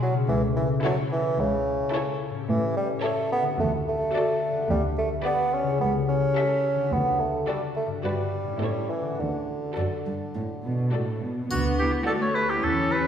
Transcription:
Already playing: B2 D4 E4 G#4 D5
0.02 F#3
0.11 C#3
0.15 C#4
0.20 E4
0.24 A4
0.29 C#2 E3
0.56 E3
0.84 F#3 E4 A4 C#5
1.12 E3
1.40 C#2 C#3
1.93 E4 A4 C#5
2.30 A2
2.35 C#4
2.39 G4
2.43 A4
2.49 A2 E3
2.77 G3
3.03 A3 G4 A4 C#5
3.32 B3
3.41 D3
3.45 D4
3.50 F#4
3.54 A4
3.58 D2 A3
3.88 A3
4.14 F#4 A4 D5
4.52 D3
4.56 D4
4.61 G4
4.65 B4
4.70 D2 G3
4.98 A3
5.25 B3 G4 B4 D5
5.54 C#4
5.63 C#3
5.67 E4
5.72 G4
5.76 C#2 A4
5.81 B3
6.09 C#4
6.37 G4 A4 E5
6.75 D3
6.79 D4
6.84 F#4
6.88 D2 A4
6.93 B3
7.21 A3
7.48 G3 F#4 A4 D5
7.76 A3
7.86 G2
7.91 D4
7.95 F#4
8.00 B4
8.04 G2 G3 F#4 B4 D5
8.43 A2
8.47 C#4
8.52 E4
8.56 A4
8.61 A2 E4 A4 C#5
8.90 E3
9.01 D3
9.05 D4
9.10 F#4
9.14 A4
9.19 D2 D3
9.77 F#2 F#4 A4 D5
10.06 G2
10.35 A2
10.64 B2
10.93 A2 F#4 A4 D5
11.22 B2
11.51 D2 D3 B3 D4 F#4, triangle
11.69 D4
11.78 E4 G4
11.88 A4
12.07 A3 F#4 A4 D5
12.22 A4 C#5
12.35 G4 B4
12.45 E4 F#4
12.50 G4
12.63 E2 E3 C#4 E4 A4
12.83 C#4
12.92 G4 B4
13.01 A4

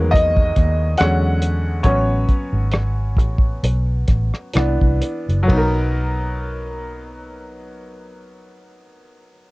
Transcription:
Already playing: E2 D#3 F#3 G#3 A#3 B4 C#5
0.11 D#5, kick
0.15 closed hi-hat
0.37 kick
0.56 D#2, kick, cross-stick, closed hi-hat
0.98 E2 D3 F#3 G#3 C#4 F#5, cross-stick, closed hi-hat
1.42 closed hi-hat
1.83 A1 F#3 B3 C#4 C#5, kick, closed hi-hat
2.29 kick, closed hi-hat
2.53 G#1
2.72 cross-stick, closed hi-hat
3.17 A1, kick, closed hi-hat
3.38 kick
3.63 B1, closed hi-hat
4.08 A1, kick, cross-stick, closed hi-hat
4.34 cross-stick
4.54 C2 E3 B3 D4, cross-stick, closed hi-hat
4.81 C2, kick
5.02 closed hi-hat
5.29 F#1, closed hi-hat
5.43 F#3
5.48 B1 B3, kick, ride
5.52 D#4
5.57 A#4

